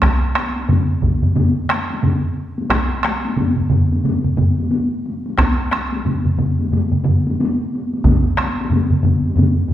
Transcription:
0.02 taiko rim, taiko, taiko high
0.35 taiko rim, taiko high
0.56 taiko high
0.69 taiko low-mid, taiko mid, taiko high
1.02 taiko, taiko low-mid, taiko mid, taiko high
1.22 taiko low-mid, taiko mid, taiko high
1.36 taiko low-mid, taiko mid, taiko high
1.70 taiko rim, taiko high
1.90 taiko high
2.03 taiko low-mid, taiko mid, taiko high
2.58 taiko high
2.70 taiko rim, taiko, taiko high
3.03 taiko rim, taiko high
3.05 taiko rim
3.25 taiko high
3.36 taiko low-mid, taiko mid, taiko high
3.56 taiko low-mid, taiko mid
3.70 taiko low-mid, taiko mid, taiko high
3.92 taiko high
4.04 taiko low-mid, taiko mid, taiko high
4.24 taiko low-mid, taiko mid
4.38 taiko low-mid, taiko mid, taiko high
4.58 taiko high
4.71 taiko high
5.06 taiko high
5.26 taiko high
5.38 taiko rim, taiko, taiko high
5.71 taiko rim, taiko high
5.92 taiko high
6.05 taiko low-mid, taiko mid, taiko high
6.24 taiko low-mid, taiko mid
6.38 taiko low-mid, taiko mid, taiko high
6.59 taiko high
6.71 taiko low-mid, taiko mid, taiko high
6.92 taiko low-mid, taiko mid
7.04 taiko low-mid, taiko mid, taiko high
7.27 taiko high
7.40 taiko high
7.74 taiko high
7.94 taiko high
8.04 taiko, taiko low-mid, taiko mid, taiko high
8.37 taiko rim, taiko high
8.60 taiko high
8.70 taiko low-mid, taiko mid, taiko high
8.90 taiko low-mid, taiko mid
9.03 taiko low-mid, taiko mid, taiko high
9.26 taiko high
9.36 taiko low-mid, taiko mid, taiko high
9.69 taiko low-mid

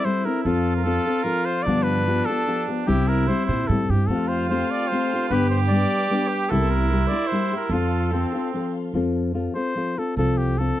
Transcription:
Already playing: E4
0.05 G3 C4 E4 A4 C5
0.25 C4 E4 A4 A#4
0.44 F2 F3 C4 F4 A4
0.76 A#4
0.83 F3 C4 F4 A4
1.07 C4 F4 A4
1.23 F3 C4 F4 A4 A#4
1.46 C5
1.62 D4 D5
1.67 G2 D3 F3 B3 F4 G4
1.83 B4
2.07 F3 B3 F4 G4
2.26 F4 G4 A4
2.30 F3 B3
2.47 F3 B3 F4 G4
2.68 F3 B3 F4 G4
2.86 C2 C3 G3 C4 E4 G4
3.08 A#4
3.28 G3 C4 E4 G4 C5
3.46 A#2 G4 C5
3.50 C4 E4
3.67 A2 G3 C4 E4 A4
3.71 G4
3.89 G2 C4 E4 G4
4.07 F2 F3 A3 C4 A4
4.11 F4 G4 A4 G5 F6
4.28 C5
4.50 A3 C4 F4 G4 C5
4.71 D5
4.88 A3 C5
4.92 C4 F4 G4
5.13 C4 F4 G4
5.29 G2 D3 G3 B3 D4 G4 B4 D6
5.50 C5
5.68 G3 B3 D5
5.73 D4 G4
6.10 G3 B3 D4 G4
6.28 G4
6.49 C2 C3 G3 A#3 E4 G4 A4 A#4 E5 C6
6.70 A#4
6.92 G3 A#3 E4 G4
7.07 D5
7.11 A#3 E4 G4
7.27 C5
7.32 G3 A#3 E4 G4
7.53 A#3 E4 G4 A#4
7.69 F2 F3 C4 F4 A4 F5
8.12 F3 C4 F4 A4
8.34 C4 F4 A4
8.54 F3 C4 F4 A4
8.94 F2 F3 C4 F4 A4
9.34 F3 C4 F4 A4
9.55 C4 F4 A4 C5
9.75 F3 C4 F4 A4
9.98 C4 F4 A4
10.17 C2 F3 C4 F4 A4
10.37 G4
10.58 F3 C4 F4 A4

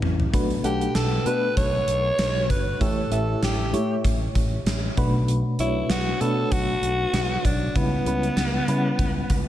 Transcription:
Already playing: G3 C#4 E4 B4
0.02 A1, mid tom
0.20 floor tom
0.33 B1 B2 A3 D4 F#4 B4, kick, closed hi-hat
0.50 closed hi-hat
0.64 B1 A3 D4 G4 A4 F#5, closed hi-hat
0.81 closed hi-hat
0.95 B1 A4, snare, closed hi-hat
1.25 B2 A3 D4 F#4 B4, closed hi-hat
1.57 B1 C#5, kick, closed hi-hat
1.88 B1, closed hi-hat
2.18 B1, snare, closed hi-hat
2.50 G1 B4, kick, closed hi-hat
2.80 A1 A2 A3 E4 G4 A4 C#5, kick, closed hi-hat
3.11 A1 A3 E4 G4 A4 E5, closed hi-hat
3.42 A1 G4, snare, closed hi-hat
3.73 A2 A3 E4 G4 C#5, closed hi-hat
4.05 A1, kick, closed hi-hat
4.35 A1, kick, closed hi-hat
4.66 A1, snare, closed hi-hat
4.97 B1 B2 A3 D4 F#4 B4, kick, closed hi-hat
5.28 closed hi-hat
5.59 B1 A3 D4 E4 F#4 C#5, closed hi-hat
5.89 B1 F#4, snare, closed hi-hat
6.21 B2 A3 D4 F#4 A4 B4, closed hi-hat
6.52 B1 F#4, kick, closed hi-hat
6.82 B1, closed hi-hat
7.13 B1, snare, closed hi-hat
7.45 B1 D4, kick, closed hi-hat
7.75 C#2 C#3 G3 B3 C#4 E4 B4, kick, closed hi-hat
8.05 C#2 G3 C#4 E4 B4, closed hi-hat
8.23 closed hi-hat
8.36 C#2, snare, closed hi-hat
8.68 C#3 G3 C#4 E4 B4, closed hi-hat
8.99 C#2, kick, closed hi-hat
9.30 C#2, kick, closed hi-hat

